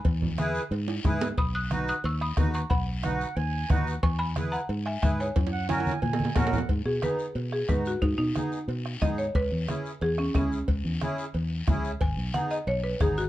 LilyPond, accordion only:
\new Staff \with { instrumentName = "Accordion" } { \time 4/4 \key gis \minor \tempo 4 = 181 r4 <e' gis' b'>8 r4. <e' gis' b'>8 r8 | r4 <dis' fis' b'>8 r4. <dis' fis' b'>8 r8 | r4 <dis' fis' b'>8 r4. <dis' fis' b'>8 r8 | r4 <e' gis' b'>8 r4. <e' gis' b'>8 r8 |
r4 <cis' fis' ais'>8 r4. <cis' fis' ais'>8 r8 | r4 <b dis' gis'>8 r4. <b dis' fis'>8 r8 | r4 <b dis' gis'>8 r4. <b dis' gis'>8 r8 | r4 <cis' e' gis'>8 r4. <cis' e' gis'>8 r8 |
r4 <cis' e' gis'>8 r4. <cis' e' gis'>8 r8 | r4 <b dis' gis'>8 r4. <b dis' gis'>8 r8 | }